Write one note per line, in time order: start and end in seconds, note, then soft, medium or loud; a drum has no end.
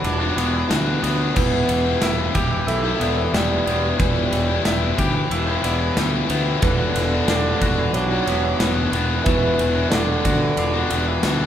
0.00 0.20 E3 medium
0.00 0.69 E3 medium
0.00 0.70 F#3 loud
0.00 0.37 B3 medium
0.00 1.36 F#4 medium
0.04 0.29 E1 medium
0.04 1.36 D4 medium
0.04 ride medium
0.19 0.36 B3 medium
0.19 0.36 D4 medium
0.19 0.36 F#4 medium
0.36 0.62 E1 medium
0.36 0.67 E3 medium
0.36 0.53 B3 medium
0.36 0.53 D4 medium
0.36 0.52 F#4 medium
0.36 ride medium
0.53 muted distorted electric guitar stroke soft
0.69 0.95 D2 medium
0.69 1.01 E3 medium
0.69 1.03 B3 medium
0.69 1.02 D4 medium
0.69 1.03 F#4 medium
0.69 snare loud
0.69 ride medium
1.02 1.28 D2 medium
1.02 1.34 E3 medium
1.02 1.36 B3 medium
1.02 1.34 D4 medium
1.02 1.35 F#4 medium
1.02 ride medium
1.35 1.61 E1 medium
1.35 2.00 E3 medium
1.35 2.30 B3 loud
1.35 1.86 B3 medium
1.35 1.86 E4 medium
1.35 1.84 G4 medium
1.35 2.02 B4 medium
1.35 kick loud
1.35 crash medium
1.69 1.94 E1 medium
1.69 3.32 E3 medium
1.69 ride medium
1.85 2.01 B3 medium
1.85 2.02 E4 medium
1.85 2.03 G4 medium
2.01 2.27 E1 medium
2.01 2.33 E3 medium
2.01 2.34 B3 medium
2.01 2.35 E4 medium
2.01 2.35 G4 medium
2.01 2.68 E5 medium
2.01 snare loud
2.01 ride medium
2.33 2.60 E1 medium
2.33 2.83 E3 medium
2.33 2.52 B3 medium
2.33 2.50 E4 medium
2.33 2.50 G4 medium
2.33 kick medium
2.33 ride medium
2.51 muted distorted electric guitar stroke soft
2.67 2.92 B1 medium
2.67 3.30 A3 loud
2.67 4.32 E4 medium
2.67 ride medium
2.84 3.01 B3 medium
2.84 3.01 E4 medium
2.84 3.01 G4 medium
3.00 3.26 E1 medium
3.00 3.32 E3 medium
3.00 3.17 B3 medium
3.00 3.16 E4 medium
3.00 3.16 G4 medium
3.00 3.67 D5 medium
3.00 ride medium
3.17 muted distorted electric guitar stroke medium
3.33 3.58 E1 medium
3.33 3.65 E3 medium
3.33 3.96 G3 loud
3.33 3.67 B3 medium
3.33 3.67 E4 loud
3.33 3.67 G4 medium
3.33 snare loud
3.33 ride medium
3.66 3.92 E1 medium
3.66 3.97 E3 medium
3.66 3.99 B3 medium
3.66 3.99 E4 medium
3.66 3.99 G4 medium
3.66 ride medium
3.98 4.25 E1 medium
3.98 4.62 E3 medium
3.98 4.96 G3 medium
3.98 4.50 B3 loud
3.98 4.48 E4 medium
3.98 4.47 G4 medium
3.98 4.65 B4 medium
3.98 kick loud
3.98 ride medium
4.32 4.57 E1 medium
4.32 5.97 E3 medium
4.32 ride medium
4.48 4.64 B3 medium
4.48 4.64 E4 medium
4.48 4.65 G4 medium
4.64 4.90 E1 medium
4.64 4.96 E3 medium
4.64 4.98 B3 medium
4.64 4.97 E4 loud
4.64 4.98 G4 loud
4.64 5.31 E5 medium
4.64 snare loud
4.64 ride medium
4.97 5.23 D2 medium
4.97 5.47 E3 medium
4.97 5.15 B3 medium
4.97 5.14 E4 medium
4.97 5.13 G4 medium
4.97 kick medium
4.97 ride medium
5.14 muted distorted electric guitar stroke soft
5.31 5.56 E1 medium
5.31 6.63 E4 medium
5.31 ride loud
5.47 5.63 B3 medium
5.47 5.63 E4 medium
5.47 5.63 G4 medium
5.63 5.89 E1 medium
5.63 5.96 E3 medium
5.63 5.81 B3 medium
5.63 5.80 E4 medium
5.63 5.79 G4 medium
5.63 6.29 D5 medium
5.63 ride medium
5.80 muted distorted electric guitar stroke medium
5.97 6.22 D2 medium
5.97 6.29 E3 medium
5.97 6.30 B3 loud
5.97 6.30 E4 loud
5.97 6.31 G4 medium
5.97 snare loud
5.97 ride medium
6.30 6.55 D2 medium
6.30 6.61 E3 medium
6.30 6.63 B3 medium
6.30 6.61 E4 medium
6.30 6.62 G4 medium
6.30 ride medium
6.60 6.88 E1 medium
6.60 7.95 D3 loud
6.60 7.27 E3 medium
6.60 7.14 B3 medium
6.60 7.28 B4 medium
6.60 kick loud
6.60 ride loud
6.65 7.13 D4 loud
6.65 7.12 F#4 loud
6.95 7.20 E1 medium
6.95 8.61 E3 medium
6.95 ride medium
7.12 7.29 B3 medium
7.12 7.30 D4 medium
7.12 7.30 F#4 medium
7.28 7.53 E1 medium
7.28 7.60 E3 medium
7.28 7.62 B3 medium
7.28 7.62 D4 medium
7.28 7.63 F#4 loud
7.28 7.94 E5 medium
7.28 snare loud
7.28 ride loud
7.62 7.87 E1 medium
7.62 8.11 E3 medium
7.62 7.79 B3 medium
7.62 7.78 D4 medium
7.62 7.78 F#4 medium
7.62 kick medium
7.62 ride medium
7.79 muted distorted electric guitar stroke soft
7.93 8.19 B1 medium
7.93 8.93 F#3 loud
7.93 9.60 D4 medium
7.93 ride medium
8.11 8.27 B3 medium
8.11 8.27 D4 medium
8.11 8.27 F#4 medium
8.26 8.52 E1 medium
8.26 8.58 E3 medium
8.26 8.44 B3 medium
8.26 8.43 D4 medium
8.26 8.42 F#4 medium
8.26 8.93 D5 medium
8.26 ride medium
8.43 muted distorted electric guitar stroke medium
8.59 8.85 E1 medium
8.59 8.91 E3 medium
8.59 8.92 B3 medium
8.59 8.92 D4 medium
8.59 8.93 F#4 loud
8.59 snare loud
8.59 ride medium
8.92 9.18 E1 medium
8.92 9.23 E3 medium
8.92 9.25 B3 medium
8.92 9.25 D4 medium
8.92 9.25 F#4 medium
8.92 ride medium
9.24 9.51 E1 medium
9.24 9.87 E3 loud
9.24 9.89 E3 medium
9.24 9.76 B3 medium
9.24 9.74 D4 medium
9.24 9.73 F#4 loud
9.24 9.92 B4 medium
9.24 kick loud
9.24 ride medium
9.59 9.84 E1 medium
9.59 11.23 E3 medium
9.59 ride medium
9.75 9.91 B3 medium
9.75 9.91 D4 medium
9.75 9.92 F#4 medium
9.90 10.17 E1 medium
9.90 11.19 D3 loud
9.90 10.23 E3 medium
9.90 10.25 B3 medium
9.90 10.25 D4 medium
9.90 10.25 F#4 medium
9.90 10.58 E5 medium
9.90 snare loud
9.90 ride medium
10.24 10.50 D2 medium
10.24 10.74 E3 medium
10.24 10.41 B3 medium
10.24 10.40 D4 medium
10.24 10.40 F#4 medium
10.24 kick medium
10.24 ride medium
10.41 muted distorted electric guitar stroke soft
10.57 10.83 E1 medium
10.57 11.46 D4 medium
10.57 ride medium
10.73 10.90 B3 medium
10.73 10.90 D4 medium
10.73 10.91 F#4 medium
10.90 11.16 E1 medium
10.90 11.22 E3 medium
10.90 11.07 B3 medium
10.90 11.06 D4 medium
10.90 11.06 F#4 medium
10.90 11.46 D5 medium
10.90 ride medium
11.07 muted distorted electric guitar stroke soft
11.23 11.46 D2 medium
11.23 11.46 E3 medium
11.23 11.46 B3 medium
11.23 11.46 D4 medium
11.23 11.46 F#4 loud
11.23 snare loud
11.23 ride loud